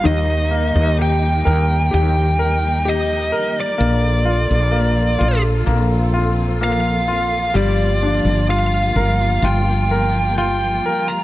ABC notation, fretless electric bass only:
X:1
M:4/4
L:1/16
Q:1/4=64
K:Gm
V:1 name="Fretless electric bass" clef=bass
E,,3 E,,3 E,,2 E,,6 z2 | B,,,3 B,,,3 B,,,2 B,,,8 | G,,,3 G,,,3 G,,,2 G,,,6 z2 |]